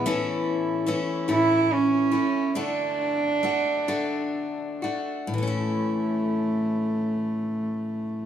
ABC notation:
X:1
M:6/8
L:1/8
Q:3/8=44
K:A
V:1 name="Cello"
z3 E C2 | D4- D z | A,6 |]
V:2 name="Steel-string acoustic guitar"
[A,,E,A,CE]2 [E,A,CE] [A,,E,A,CE]2 [A,CE] | [D,A,DF]2 [D,A,DF] [D,A,DF]2 [A,DF] | [A,,E,A,CE]6 |]